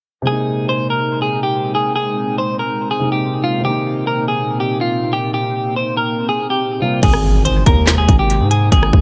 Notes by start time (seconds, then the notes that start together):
0.22 C3 G#3
0.27 A#2 G#3 A#3 C4 D#4 G#4
0.32 D#4
0.69 C5
0.90 A#4
1.22 G#4
1.43 G4
1.75 G#4
1.96 G#4
2.38 C5
2.59 A#4
2.91 G#4
2.99 C3 G#3 A#3
3.04 D#4
3.12 G4
3.44 F4
3.60 C3 D#3
3.65 A#3 C4 G4
3.70 D#4
4.07 A#4
4.28 G#4
4.60 G4
4.81 F4
5.13 G4
5.34 G4
5.76 C5
5.97 A#4
6.29 G#4
6.50 G4
6.80 C3 G3 A#3 F4
6.84 C4
7.03 G#1 C3 G#3 A#3 D#4 G#4, kick, closed hi-hat, crash, impact
7.14 cross-stick
7.45 C5, closed hi-hat
7.66 D#2 A#4, kick, closed hi-hat
7.87 snare, clap, closed hi-hat
7.98 G#4
8.09 G#1, kick, closed hi-hat
8.19 G4
8.30 closed hi-hat
8.40 G#2
8.51 G#4, closed hi-hat
8.72 G#1 G#4, kick, closed hi-hat
8.83 cross-stick
8.93 G#1, kick